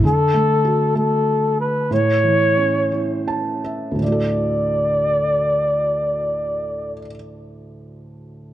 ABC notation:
X:1
M:6/8
L:1/8
Q:3/8=53
K:D
V:1 name="Flugelhorn"
A3 A2 B | c4 z2 | d6- | d6 |]
V:2 name="Felt piano"
z6 | z4 a e | z6 | z6 |]
V:3 name="Felt piano"
D, A, F A,3 | A,, E, C E3 | [D,,A,,D,A,FA]6- | [D,,A,,D,A,FA]6 |]